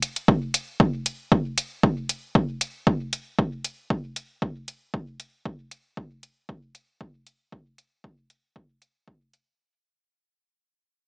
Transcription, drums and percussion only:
0.02 closed hi-hat medium
0.16 closed hi-hat soft
0.28 kick loud
0.54 closed hi-hat medium
0.80 kick loud
1.06 closed hi-hat medium
1.32 kick loud
1.58 closed hi-hat medium
1.83 kick loud
2.09 closed hi-hat medium
2.35 kick loud
2.61 closed hi-hat medium
2.87 kick loud
3.13 closed hi-hat medium
3.39 kick loud
3.64 closed hi-hat medium
3.90 kick loud
4.16 closed hi-hat medium
4.42 kick loud
4.68 closed hi-hat medium
4.94 kick loud
5.20 closed hi-hat medium
5.45 kick loud
5.71 closed hi-hat medium
5.97 kick medium
6.23 closed hi-hat medium
6.49 kick loud
6.75 closed hi-hat medium
7.01 kick loud
7.27 closed hi-hat medium
7.52 kick loud
7.78 closed hi-hat medium
8.04 kick loud
8.30 closed hi-hat medium
8.56 kick loud
8.82 closed hi-hat medium
9.08 kick loud
9.33 closed hi-hat medium

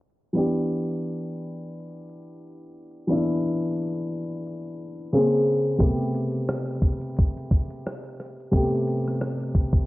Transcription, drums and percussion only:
5.80 kick medium
5.80 closed hi-hat medium
6.03 closed hi-hat soft
6.15 closed hi-hat medium
6.31 closed hi-hat soft
6.49 cross-stick loud
6.49 closed hi-hat medium
6.67 closed hi-hat soft
6.82 kick medium
6.82 closed hi-hat medium
7.01 closed hi-hat soft
7.16 kick medium
7.16 closed hi-hat medium
7.37 closed hi-hat soft
7.51 kick medium
7.51 closed hi-hat medium
7.70 closed hi-hat soft
7.86 cross-stick loud
7.86 closed hi-hat medium
8.04 closed hi-hat soft
8.20 cross-stick soft
8.20 closed hi-hat medium
8.40 closed hi-hat soft
8.53 kick medium
8.53 closed hi-hat medium
8.75 closed hi-hat soft
8.87 closed hi-hat medium
9.04 cross-stick soft
9.04 closed hi-hat soft
9.21 cross-stick loud
9.21 closed hi-hat medium
9.40 closed hi-hat soft
9.55 kick medium
9.55 closed hi-hat medium
9.73 kick medium
9.73 closed hi-hat soft

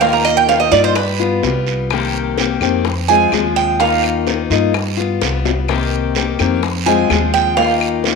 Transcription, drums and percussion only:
0.01 high bongo medium
0.01 long guiro medium
0.25 high bongo soft
0.25 claves medium
0.49 high bongo medium
0.49 short guiro medium
0.72 high bongo soft
0.72 short guiro medium
0.96 high bongo medium
0.96 long guiro medium
0.96 claves medium
1.20 high bongo soft
1.43 high bongo soft
1.43 low bongo medium
1.43 short guiro medium
1.67 short guiro medium
1.90 high bongo medium
1.90 long guiro medium
1.90 claves medium
2.14 high bongo soft
2.37 high bongo medium
2.37 short guiro medium
2.61 high bongo soft
2.61 short guiro medium
2.61 claves medium
2.85 high bongo medium
2.85 long guiro medium
3.09 high bongo soft
3.32 high bongo soft
3.32 low bongo medium
3.32 short guiro medium
3.32 claves medium
3.56 short guiro medium
3.80 high bongo medium
3.80 long guiro medium
4.04 high bongo soft
4.04 claves medium
4.27 high bongo medium
4.27 short guiro medium
4.51 high bongo soft
4.51 short guiro medium
4.74 high bongo medium
4.74 long guiro medium
4.74 claves medium
4.98 high bongo soft
5.22 high bongo medium
5.22 short guiro medium
5.45 low bongo medium
5.45 short guiro medium
5.68 high bongo medium
5.68 long guiro medium
5.68 claves medium
5.92 high bongo soft
6.15 high bongo medium
6.15 short guiro medium
6.39 high bongo soft
6.39 short guiro medium
6.39 claves medium
6.63 high bongo medium
6.63 long guiro medium
6.86 high bongo soft
7.10 high bongo soft
7.10 low bongo medium
7.10 short guiro medium
7.10 claves medium
7.35 short guiro medium
7.57 high bongo medium
7.57 long guiro medium
7.81 high bongo soft
7.81 claves medium
8.04 high bongo medium
8.04 short guiro medium

